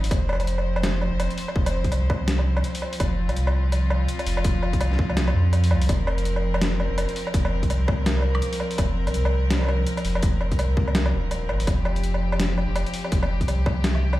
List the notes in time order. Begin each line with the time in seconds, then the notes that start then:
Already playing: F3 C4 D#4
0.04 open hi-hat
0.11 F1 C5, kick, closed hi-hat, low woodblock
0.29 low woodblock
0.33 low woodblock
0.35 low woodblock
0.40 closed hi-hat, low woodblock
0.45 closed hi-hat, low woodblock
0.58 low woodblock
0.76 low woodblock
0.83 snare, closed hi-hat
1.02 low woodblock
1.12 F1
1.20 closed hi-hat, low woodblock
1.30 closed hi-hat
1.38 open hi-hat
1.48 low woodblock
1.56 F1, kick
1.66 closed hi-hat, low woodblock
1.84 C2, kick, closed hi-hat
1.92 closed hi-hat, low woodblock
2.10 kick, low woodblock
2.28 snare, closed hi-hat
2.39 low woodblock
2.57 low woodblock
2.64 closed hi-hat
2.75 open hi-hat
2.82 low woodblock
2.93 open hi-hat
3.00 F1 F4, kick, closed hi-hat, low woodblock
3.28 C2, closed hi-hat, low woodblock
3.36 closed hi-hat
3.47 low woodblock
3.72 closed hi-hat, low woodblock
3.90 low woodblock
4.08 closed hi-hat
4.19 closed hi-hat, low woodblock
4.27 F1, open hi-hat
4.37 low woodblock
4.44 F1, kick, closed hi-hat
4.63 low woodblock
4.73 C2, kick, closed hi-hat
4.81 closed hi-hat, low woodblock
4.92 snare
4.99 kick
5.10 low woodblock
5.17 snare, closed hi-hat
5.28 low woodblock
5.35 F2
5.53 closed hi-hat, low woodblock
5.64 open hi-hat
5.71 C2, low woodblock
5.82 open hi-hat
5.89 F1 A#4, kick, closed hi-hat, low woodblock
6.07 low woodblock
6.18 closed hi-hat
6.25 closed hi-hat
6.36 low woodblock
6.54 low woodblock
6.62 snare, closed hi-hat
6.80 low woodblock
6.90 F1
6.98 closed hi-hat, low woodblock
7.09 closed hi-hat
7.16 open hi-hat
7.27 low woodblock
7.34 F1, kick, closed hi-hat
7.45 low woodblock
7.63 C2, kick, closed hi-hat
7.70 closed hi-hat, low woodblock
7.88 kick, low woodblock
8.06 snare, closed hi-hat
8.17 low woodblock
8.19 low woodblock
8.21 low woodblock
8.22 low woodblock
8.35 low woodblock
8.42 closed hi-hat
8.53 open hi-hat
8.60 low woodblock
8.71 open hi-hat
8.78 F1, kick, closed hi-hat, low woodblock
9.07 C2, closed hi-hat, low woodblock
9.14 closed hi-hat
9.25 low woodblock
9.51 snare, closed hi-hat, low woodblock
9.53 low woodblock
9.56 low woodblock
9.59 low woodblock
9.61 low woodblock
9.63 low woodblock
9.65 low woodblock
9.67 low woodblock
9.69 low woodblock
9.87 closed hi-hat
9.97 closed hi-hat, low woodblock
10.05 F1, open hi-hat
10.15 low woodblock
10.23 F1, kick, closed hi-hat
10.41 low woodblock
10.52 C2, kick, closed hi-hat
10.59 closed hi-hat, low woodblock
10.77 kick
10.88 low woodblock
10.95 snare, closed hi-hat
11.06 low woodblock
11.13 D#1
11.31 closed hi-hat, low woodblock
11.49 G#1, low woodblock
11.60 open hi-hat
11.67 F1 G4, kick, closed hi-hat, low woodblock
11.85 low woodblock
11.96 closed hi-hat
12.04 closed hi-hat
12.14 low woodblock
12.32 low woodblock
12.40 snare, closed hi-hat
12.58 low woodblock
12.68 F1
12.76 closed hi-hat, low woodblock
12.86 closed hi-hat
12.94 open hi-hat
13.04 low woodblock
13.12 F1, kick, closed hi-hat
13.23 low woodblock
13.41 C2, kick, closed hi-hat
13.48 closed hi-hat, low woodblock
13.66 kick, low woodblock
13.84 snare, closed hi-hat
13.95 low woodblock
14.13 low woodblock